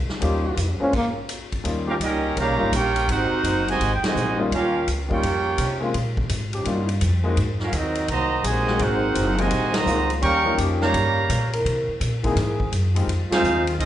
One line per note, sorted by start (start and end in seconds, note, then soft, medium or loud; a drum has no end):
0.09 snare medium
0.20 0.56 D#2 medium
0.20 0.76 F3 loud
0.20 0.42 G3 medium
0.20 0.42 A#3 medium
0.20 0.42 C#4 medium
0.20 0.76 C#4 loud
0.20 0.76 D#4 loud
0.20 0.43 D#4 medium
0.20 0.43 F4 medium
0.20 0.76 G4 loud
0.20 ride medium
0.57 0.79 F2 medium
0.57 hi-hat pedal medium
0.57 ride medium
0.80 0.89 G#3 medium
0.80 0.92 G#3 medium
0.80 0.92 A#3 medium
0.80 0.89 C4 medium
0.80 0.92 C4 medium
0.80 0.93 C#4 loud
0.80 0.89 D4 medium
0.80 0.93 D4 medium
0.80 0.93 F4 medium
0.80 0.89 C5 loud
0.80 muted upright bass stroke soft
0.93 1.09 A#3 medium
0.93 kick medium
0.93 crash medium
0.93 ride medium
1.29 hi-hat pedal medium
1.29 ride medium
1.52 kick soft
1.52 ride medium
1.64 1.99 D#2 medium
1.64 1.85 G3 medium
1.64 1.85 A#3 medium
1.64 1.86 C#4 medium
1.64 1.86 D#4 medium
1.64 1.86 F4 medium
1.64 ride medium
1.87 1.96 F3 medium
1.87 1.94 A#3 medium
1.87 1.96 C#4 medium
1.87 1.94 C#4 medium
1.87 1.95 C#4 medium
1.87 1.96 D#4 medium
1.87 1.93 F4 medium
1.87 1.96 G4 loud
1.87 1.95 G4 medium
1.87 1.95 A#4 medium
1.87 1.95 F5 loud
2.00 2.35 C#2 medium
2.00 2.34 G3 medium
2.00 2.34 A#3 medium
2.00 2.35 C#4 medium
2.00 2.34 D#4 medium
2.00 2.35 G4 medium
2.00 2.35 A#4 medium
2.00 2.35 D#5 loud
2.00 hi-hat pedal medium
2.00 ride medium
2.36 2.49 C2 medium
2.36 2.70 C#3 loud
2.36 2.70 G3 medium
2.36 2.70 A#3 loud
2.36 ride medium
2.40 2.72 G4 loud
2.40 2.72 C#5 medium
2.40 2.72 F5 loud
2.40 2.72 A#5 loud
2.49 2.60 A#1 medium
2.58 2.71 G1 medium
2.58 2.70 G3 medium
2.58 2.70 A#3 medium
2.58 2.71 C#4 medium
2.58 2.71 D#4 medium
2.58 2.71 F4 medium
2.72 3.07 A#1 loud
2.72 3.06 A#3 medium
2.72 3.06 C#4 medium
2.72 3.06 G4 medium
2.72 3.07 A#4 medium
2.72 3.07 C#5 medium
2.72 3.08 G5 loud
2.72 hi-hat pedal medium
2.72 ride medium
2.76 3.08 F4 medium
2.96 ride medium
3.08 3.29 G#1 medium
3.08 3.68 C4 medium
3.08 3.67 D#4 loud
3.08 3.69 D#4 medium
3.08 3.67 F#4 medium
3.08 3.69 A#4 medium
3.08 3.69 C5 loud
3.08 3.69 F#5 loud
3.08 ride medium
3.31 muted upright bass stroke soft
3.43 3.78 F#1 loud
3.43 hi-hat pedal medium
3.43 ride medium
3.68 3.92 C3 medium
3.68 3.92 D#3 loud
3.68 3.92 G#3 loud
3.68 3.94 F#4 medium
3.68 3.93 C5 medium
3.68 3.93 D#5 medium
3.68 3.94 G#5 loud
3.68 ride medium
3.80 4.01 G#1 medium
3.80 ride medium
3.94 4.03 G5 medium
4.03 4.39 C3 medium
4.03 4.40 D#3 medium
4.03 4.39 G#3 medium
4.03 4.40 F#4 medium
4.03 4.40 C5 medium
4.03 4.40 D#5 loud
4.03 4.40 G#5 loud
4.03 muted upright bass stroke soft
4.03 snare medium
4.03 ride medium
4.15 4.50 A#1 medium
4.15 4.51 F#3 medium
4.15 4.51 A#3 medium
4.15 4.51 C4 medium
4.15 4.51 G#4 medium
4.15 hi-hat pedal medium
4.37 4.49 G3 medium
4.37 4.50 A#3 medium
4.37 4.50 C#4 medium
4.37 4.50 D#4 medium
4.37 4.50 F4 medium
4.51 4.86 D#2 medium
4.51 4.85 A#3 medium
4.51 4.85 C#4 medium
4.51 4.86 C#4 medium
4.51 4.86 F4 medium
4.51 4.86 G4 medium
4.51 4.86 A#4 medium
4.51 4.86 F5 loud
4.51 ride medium
4.87 5.22 C#2 medium
4.87 hi-hat pedal medium
4.87 ride medium
5.08 5.21 G3 medium
5.08 5.21 A#3 medium
5.08 5.78 A#3 medium
5.08 5.21 C#4 medium
5.08 5.78 C#4 medium
5.08 5.21 D#4 medium
5.08 5.22 F4 medium
5.08 5.78 G4 medium
5.08 kick medium
5.13 5.79 F4 medium
5.13 5.79 A#4 medium
5.13 5.79 C#5 medium
5.13 5.79 G5 loud
5.23 5.57 F2 medium
5.23 ride medium
5.58 5.93 C3 loud
5.58 5.94 F3 medium
5.58 5.94 D#4 medium
5.58 5.94 G4 loud
5.58 5.94 C#5 medium
5.58 hi-hat pedal medium
5.58 ride medium
5.80 5.92 G#3 medium
5.80 5.92 A#3 medium
5.80 5.92 C4 medium
5.80 5.93 C#4 medium
5.80 5.93 F4 medium
5.94 6.29 A#2 medium
5.94 ride medium
6.17 kick medium
6.29 6.64 G#2 loud
6.29 hi-hat pedal medium
6.29 ride medium
6.52 6.98 F3 loud
6.52 6.99 C#4 medium
6.52 6.99 D#4 medium
6.52 6.99 G4 loud
6.52 ride medium
6.64 7.00 G2 medium
6.64 6.86 G3 medium
6.64 6.86 A#3 medium
6.64 6.86 C#4 medium
6.64 6.87 D#4 medium
6.64 6.87 F4 medium
6.64 ride medium
6.89 ride medium
7.01 7.36 F2 loud
7.01 hi-hat pedal medium
7.01 ride medium
7.24 7.33 F#3 loud
7.24 7.35 G#3 medium
7.24 7.35 A#3 medium
7.24 7.32 A#3 medium
7.24 7.33 C4 medium
7.24 7.36 C4 medium
7.24 7.36 D#4 medium
7.24 7.36 F#4 medium
7.24 7.33 G#4 loud
7.37 7.72 G#2 medium
7.37 ride medium
7.60 7.73 C#4 medium
7.60 7.73 F4 medium
7.60 7.73 F#4 medium
7.60 7.73 A#4 medium
7.60 7.73 F5 medium
7.60 snare soft
7.72 8.07 D#2 medium
7.72 8.10 A#4 medium
7.72 8.10 D#5 medium
7.72 hi-hat pedal soft
7.72 ride medium
7.76 8.09 F#3 medium
7.76 8.10 C4 medium
7.76 8.10 D#4 medium
7.76 8.10 F#4 medium
7.95 ride medium
8.08 8.43 C2 medium
8.08 8.42 D#3 medium
8.08 8.42 F#3 medium
8.08 8.42 A#3 medium
8.08 8.43 F#4 medium
8.08 8.43 C5 medium
8.08 8.43 D#5 medium
8.08 8.43 A#5 medium
8.08 ride medium
8.42 8.78 A#1 medium
8.42 8.81 C3 medium
8.42 8.80 D#3 medium
8.42 8.77 F#3 loud
8.42 8.80 G#3 medium
8.42 8.77 A#3 medium
8.42 8.76 C4 medium
8.42 8.76 G#4 loud
8.42 hi-hat pedal medium
8.42 ride medium
8.46 8.81 F#4 medium
8.46 8.81 C5 medium
8.46 8.81 D#5 medium
8.46 8.81 G#5 medium
8.67 8.78 G#3 medium
8.67 8.78 A#3 medium
8.67 8.79 C4 medium
8.67 8.79 D#4 medium
8.67 8.79 F#4 medium
8.67 snare soft
8.77 9.14 G#1 medium
8.77 9.33 F#3 loud
8.77 9.33 A#3 loud
8.77 9.33 C4 medium
8.77 9.39 D#4 medium
8.77 9.39 F#4 medium
8.77 9.33 G#4 loud
8.77 ride medium
8.81 9.39 C4 medium
8.81 9.40 D#4 medium
8.81 9.40 A#4 medium
8.81 9.39 C5 medium
8.81 9.40 F#5 loud
9.15 9.50 F#1 loud
9.15 hi-hat pedal medium
9.15 ride medium
9.38 9.74 C3 loud
9.38 9.72 D#3 loud
9.38 9.49 G#3 medium
9.38 9.74 G#3 medium
9.38 9.50 A#3 medium
9.38 9.50 C4 medium
9.38 9.50 D#4 medium
9.38 9.50 F#4 medium
9.38 9.75 F#4 medium
9.38 9.74 C5 medium
9.38 9.74 D#5 medium
9.38 9.75 G#5 loud
9.38 ride medium
9.51 9.86 A#1 medium
9.51 ride medium
9.73 10.10 D#3 medium
9.73 10.09 F#3 loud
9.73 10.09 A#3 medium
9.73 10.11 F#4 medium
9.73 10.10 C5 loud
9.73 10.10 D#5 loud
9.73 10.10 A#5 loud
9.73 snare medium
9.73 ride medium
9.85 10.21 C#2 medium
9.85 10.07 G#3 medium
9.85 10.07 A#3 medium
9.85 10.07 C4 medium
9.85 10.08 D#4 medium
9.85 10.08 F4 medium
9.85 hi-hat pedal medium
10.10 ride medium
10.21 10.57 D#2 loud
10.21 10.55 G3 loud
10.21 10.55 A#3 loud
10.21 10.55 C#4 loud
10.21 10.56 A#4 loud
10.21 10.56 F5 loud
10.21 10.56 G5 loud
10.21 10.56 C#6 loud
10.21 ride medium
10.45 10.91 F3 medium
10.45 10.91 A#3 medium
10.45 10.91 C#4 medium
10.45 10.92 D#4 medium
10.45 10.92 G4 medium
10.56 10.93 F2 loud
10.56 11.12 F3 medium
10.56 11.11 C#4 medium
10.56 11.11 D#4 medium
10.56 11.11 G4 loud
10.56 hi-hat pedal medium
10.56 ride medium
10.81 11.49 C#3 medium
10.81 11.48 G3 loud
10.81 11.49 A#3 loud
10.81 11.49 G4 medium
10.81 11.50 C#5 medium
10.81 11.49 F5 medium
10.81 11.49 A#5 loud
10.81 snare medium
10.94 11.28 G2 medium
10.94 ride medium
11.29 11.64 A#2 loud
11.29 hi-hat pedal medium
11.29 ride medium
11.52 11.98 E3 loud
11.52 11.98 A#3 loud
11.52 11.98 C4 medium
11.52 11.98 A#4 loud
11.52 ride medium
11.65 11.87 C3 medium
11.65 ride medium
11.88 muted upright bass stroke soft
12.00 12.35 A#2 loud
12.00 hi-hat pedal medium
12.00 ride medium
12.23 12.35 E3 medium
12.23 12.70 E3 loud
12.23 12.35 A#3 medium
12.23 12.70 A#3 loud
12.23 12.35 C4 medium
12.23 12.70 C4 loud
12.23 12.36 D#4 medium
12.23 12.70 G#4 loud
12.23 12.36 G#4 medium
12.23 kick medium
12.23 ride medium
12.35 12.71 G#2 medium
12.35 snare soft
12.35 ride medium
12.60 kick medium
12.72 13.07 F#2 loud
12.72 hi-hat pedal medium
12.72 ride medium
12.95 13.41 D#3 medium
12.95 13.06 F3 medium
12.95 13.06 G#3 medium
12.95 13.41 G#3 medium
12.95 13.07 C4 medium
12.95 13.41 C4 medium
12.95 13.07 D#4 medium
12.95 13.41 F4 loud
12.95 13.07 G4 medium
12.95 ride medium
13.07 13.29 F2 medium
13.07 ride medium
13.31 13.64 G#3 medium
13.31 13.64 C4 medium
13.31 13.64 D#4 medium
13.31 13.64 F4 medium
13.31 13.64 G#4 medium
13.31 13.65 C5 medium
13.31 13.65 F5 loud
13.31 muted upright bass stroke soft
13.31 snare loud
13.31 ride medium
13.43 13.78 D#2 medium
13.43 hi-hat pedal medium
13.66 13.75 D#3 loud
13.66 13.75 G#3 medium
13.66 13.75 C4 loud
13.66 13.75 F4 loud
13.66 ride medium
13.79 13.85 C2 medium
13.79 13.85 G#3 medium
13.79 13.85 C4 medium
13.79 13.85 D#4 medium
13.79 13.85 F4 medium
13.79 13.85 G#4 medium
13.79 13.85 D#5 loud
13.79 ride medium